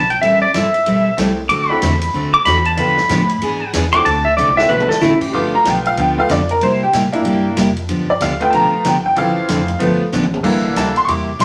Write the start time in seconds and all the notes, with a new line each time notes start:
Already playing: B1
0.10 G5, ride
0.21 A1 E3 G3 C4 E4 A4 E5, ride
0.42 D5
0.54 G1 E3 G3 C4 E4 A4 E5, snare, hi-hat pedal, ride
0.74 ride
0.86 B1 E3 G3 C4 E4 A4, ride
1.17 C2 E3 G3 A3 C4 E4 G4 A4, snare, hi-hat pedal, ride
1.49 D2 D3 A3 C4 F#4 A4 D6, ride
1.69 C4 D4 E4 F#4 A4 B5
1.82 E2 D3 A3 C4 F#4 A4, snare, hi-hat pedal, ride
2.01 ride
2.14 D2 D3 A3 C4 F#4 A4
2.34 D6
2.45 E2 D3 A3 C4 F#4 A4 B5, snare, hi-hat pedal, ride
2.65 A5, ride
2.77 G2 D3 F3 B3 D4 F4 G4 A4 B5, ride
2.97 snare
3.09 A2 D3 F3 B3 D4 G4, snare, hi-hat pedal, ride
3.29 ride
3.42 G#2 E3 B3 D4 G#4, ride
3.73 E2 E3 B3 D4 G#4, snare, hi-hat pedal, ride
3.93 C4 D4 E4 F#4 A4 D6, ride
4.05 D2 D3 A3 C4 F#4 A4 A5, ride
4.25 E5
4.37 C2 D3 A3 C4 F#4 A4 D5, hi-hat pedal
4.48 mid tom
4.57 C4 D4 E4 F#4 A4 E5, snare
4.69 B1 D3 A3 C4 F#4 A4 B4, high tom
4.80 high tom
4.89 A4, muted upright bass stroke, snare
5.01 A1 D3 A3 C4 E4 F#4 A4, snare, hi-hat pedal
5.21 G4, kick, crash
5.33 G1 D3 F3 A3 B3 D4 F4 G4 D6
5.55 A#5
5.65 B1 D3 F3 B3 D4 G4 G5, snare, hi-hat pedal, ride
5.86 F5, ride
5.97 D2 D3 F3 B3 D4 G4 G5, ride
6.18 A3 B3 F4 F5
6.29 F2 D3 F3 B3 D4 G4 D5, snare, hi-hat pedal, ride
6.49 A#4, ride
6.61 C3 G3 A#3 E4 G4 C5, ride
6.83 G4
6.93 A2 C3 G3 A#3 E4 G4, snare, hi-hat pedal, ride
7.12 A#3 D4 E4, ride
7.24 G2 C3 G3 A#3 E4 G4, ride
7.57 F2 C3 G3 A#3 E4 G4, snare, hi-hat pedal, ride
7.77 ride
7.89 G2 D3 F3 B3 D4 G4, ride
8.10 D5
8.20 D2 D3 F3 B3 D4 G4 F5, snare, hi-hat pedal, ride
8.40 A3 B3 F4 G5, ride
8.50 B1 D3 F3 B3 D4 G4 A5, ride
8.55 A#5
8.72 muted upright bass stroke
8.84 G1 D3 F3 B3 D4 G4 G5, snare, hi-hat pedal, ride
9.06 G5
9.16 A1 D3 E3 F3 C4 D4 A4 F5, ride
9.48 F1 D3 F3 C4 D4 A4, snare, hi-hat pedal, ride
9.68 ride
9.79 G1 D3 F3 A3 B3 D4 G4, ride
10.01 muted upright bass stroke
10.12 A1 D3 F3 B3 D4 G4, snare, hi-hat pedal
10.23 high tom
10.34 high tom
10.43 C2 C3 D3 E3 G3 A#3 E4 G4, kick, crash
10.76 D2 C3 G3 A#3 E4 G4 A5, snare, hi-hat pedal, ride
10.96 C6, ride
11.05 E2 C3 G3 A#3 E4 C#6, ride
11.09 G4 D6
11.39 D2 C3 G3 A#3 E4 G4 C6, snare, hi-hat pedal, ride